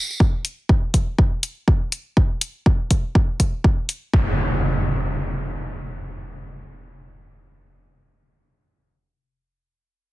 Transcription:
0.10 tambourine
0.20 kick
0.45 closed hi-hat
0.69 kick
0.94 kick, closed hi-hat
1.19 kick
1.43 closed hi-hat
1.68 kick
1.92 closed hi-hat
2.17 kick
2.41 closed hi-hat
2.66 kick
2.91 kick, closed hi-hat
3.15 kick
3.40 kick, closed hi-hat
3.64 kick
3.89 closed hi-hat
4.13 kick, impact

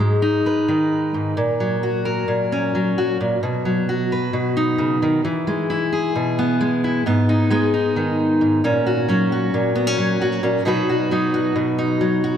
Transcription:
Already playing: G#2
0.00 G#3
0.22 D#4
0.46 B4
0.68 D#3
1.14 G#2
1.37 A#2
1.60 F#3
1.83 F#4
2.05 A#4
2.28 A#2
2.52 C#4
2.75 F#3
2.98 F#4
3.21 A#2
3.43 B2
3.65 F#3
3.89 F#4
4.12 B4
4.33 B2
4.57 D#4
4.78 C#3
5.02 D#3
5.25 E3
5.47 G#3
5.70 E4
5.93 G#4
6.16 B2
6.39 B3
6.61 G#3
6.84 E4
7.06 G#2 B3
7.29 D#4
7.50 G#3 B3
7.74 D#4
7.96 D#3
8.41 G#2
8.64 A#2 C#4
8.86 F#4
9.09 F#3 C#4
9.32 F#4
9.54 A#2
9.76 B3
9.87 C#4
9.98 F#3
10.21 F#4
10.43 A#2 C#4
10.65 B2 F#3 D#4 F#4 B4
10.89 F#4
11.11 F#3 D#4
11.34 F#4
11.56 B2
11.79 D#4
12.01 F#3
12.24 F#4

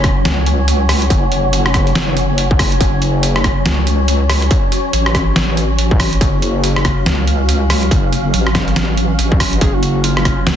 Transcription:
Already playing: F#1 F#3 C#4 F#4 C#5
0.04 kick, cross-stick, closed hi-hat
0.25 C#2, snare, closed hi-hat
0.46 closed hi-hat
0.68 closed hi-hat
0.89 cross-stick, open hi-hat
1.02 closed hi-hat
1.10 F#1, kick, closed hi-hat
1.32 closed hi-hat
1.53 closed hi-hat
1.66 cross-stick
1.74 kick, cross-stick, closed hi-hat
1.87 closed hi-hat
1.95 F#1, snare, closed hi-hat
2.17 closed hi-hat
2.38 closed hi-hat
2.51 kick
2.59 kick, cross-stick, open hi-hat
2.72 closed hi-hat
2.81 F#1 F#4 C#5, kick, closed hi-hat
3.02 closed hi-hat
3.23 closed hi-hat
3.36 cross-stick
3.44 kick, cross-stick, closed hi-hat
3.66 C#2, snare, closed hi-hat
3.87 closed hi-hat
4.08 closed hi-hat
4.30 cross-stick, open hi-hat
4.42 closed hi-hat
4.51 kick, closed hi-hat
4.72 closed hi-hat
4.93 A1, closed hi-hat
5.06 cross-stick
5.15 kick, cross-stick, closed hi-hat
5.36 snare, closed hi-hat
5.57 closed hi-hat
5.79 closed hi-hat
5.91 kick
6.00 kick, cross-stick, open hi-hat
6.13 closed hi-hat
6.21 F#1 F5, kick, closed hi-hat
6.42 closed hi-hat
6.64 closed hi-hat
6.76 cross-stick
6.85 kick, cross-stick, closed hi-hat
7.06 C#2, snare, closed hi-hat
7.27 closed hi-hat
7.49 closed hi-hat
7.70 cross-stick, open hi-hat
7.83 closed hi-hat
7.91 F#1, kick, closed hi-hat
8.13 closed hi-hat
8.34 A1, closed hi-hat
8.47 cross-stick
8.55 kick, cross-stick, snare, closed hi-hat
8.68 closed hi-hat
8.76 snare, closed hi-hat
8.97 closed hi-hat
9.19 A1, closed hi-hat
9.32 kick
9.40 kick, cross-stick, open hi-hat
9.53 closed hi-hat
9.61 F#1 C#4 G#4 B4 C#5, kick, closed hi-hat
9.74 F#4
9.83 closed hi-hat
10.04 F4, closed hi-hat
10.17 F4, cross-stick
10.25 kick, cross-stick, closed hi-hat
10.46 C#2 F#4, snare, closed hi-hat

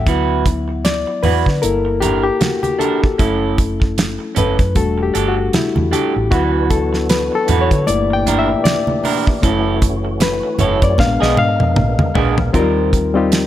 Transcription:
Already playing: E5
0.06 D2 F#3 B3 E4 F#4 B4, kick, closed hi-hat, muted conga
0.46 kick, closed hi-hat, muted conga
0.68 muted clean electric guitar stroke
0.85 D5, snare, closed hi-hat, high conga
1.07 muted clean electric guitar stroke
1.23 E2 E4 F#4 B4, open hi-hat, low conga
1.46 D3, muted clean electric guitar stroke, kick, snare
1.62 G1 A#3 E4 A4 A#4, closed hi-hat, muted conga
1.85 muted clean electric guitar stroke
2.00 D4 E4 G4 A#4, closed hi-hat, muted conga, low conga
2.24 G4, muted clean electric guitar stroke
2.40 F#4, snare, closed hi-hat, high conga
2.63 G4, muted clean electric guitar stroke, closed hi-hat, high conga
2.79 D4 E4 A4 A#4, closed hi-hat, high conga
3.02 muted clean electric guitar stroke, kick
3.18 F#1 A3 C#4 E4 A4, kick, closed hi-hat
3.58 kick, closed hi-hat, muted conga
3.80 muted clean electric guitar stroke, kick
3.98 snare, closed hi-hat, high conga
4.19 muted clean electric guitar stroke
4.35 F#1 C#4 E4 A4 B4, closed hi-hat, low conga
4.58 F#2, muted clean electric guitar stroke, kick, closed hi-hat
4.75 E1 G3 A3 D4 F#4 A4, kick, closed hi-hat, muted conga, low conga
4.98 muted clean electric guitar stroke
5.03 G4
5.14 G1 D4 G4 A4, closed hi-hat, muted conga
5.28 F#4
5.37 muted clean electric guitar stroke
5.53 E4, muted fingered electric bass stroke, snare, closed hi-hat, high conga
5.76 E2, muted clean electric guitar stroke, high conga
5.91 D4 G4 A4, closed hi-hat, high conga
6.15 A1, muted clean electric guitar stroke
6.30 D2 E3 F#3 B3 D4 E4 F#4 B4, kick, closed hi-hat
6.70 A4, kick, closed hi-hat, muted conga
6.93 muted clean electric guitar stroke, snare
7.09 B4, snare, closed hi-hat, high conga
7.32 A4, muted clean electric guitar stroke
7.48 E2 E4 F#4 B4, closed hi-hat, low conga
7.61 C#5
7.71 D3, muted clean electric guitar stroke, kick, closed hi-hat
7.86 G1 A#2 A3 A#3 D4 E4 G4 D5, closed hi-hat, muted conga
8.10 G5, muted clean electric guitar stroke
8.27 D4 E4 A#4, closed hi-hat, muted conga, low conga
8.39 E5
8.49 muted clean electric guitar stroke
8.64 D5, snare, closed hi-hat, high conga
8.87 muted clean electric guitar stroke, high conga
9.04 D4 E4 A#4, open hi-hat, high conga
9.27 muted clean electric guitar stroke, kick
9.42 F#1 A3 C#4 E4 F#4 A4, kick, closed hi-hat
9.82 kick, closed hi-hat, muted conga
10.05 muted clean electric guitar stroke
10.20 B4, snare, closed hi-hat, high conga
10.43 muted clean electric guitar stroke
10.59 F#1 C#4 E4 A4 C#5, closed hi-hat, low conga
10.82 F#2 D5, muted clean electric guitar stroke, kick, closed hi-hat
10.97 A#1 G#3 B3 D4 A#4 F5, muted clean electric guitar stroke, kick, snare, muted conga, low conga
11.21 B1 B3 D4 G#4 D#5, snare
11.37 G#2 F5, muted clean electric guitar stroke, high tom, muted conga
11.60 F2, muted clean electric guitar stroke, high tom
11.76 A#1, mid tom, high conga
11.99 muted clean electric guitar stroke, mid tom, high conga
12.15 A#1 B3 D4 G#4, floor tom, high conga
12.37 muted clean electric guitar stroke, floor tom
12.53 D#2 F#3 C4 D#4 F4 G4 A#4 C5, kick, closed hi-hat
12.59 G3
12.93 kick, closed hi-hat, muted conga
13.14 G3 C4 D#4 F4 G4, muted clean electric guitar stroke
13.32 snare, closed hi-hat, high conga

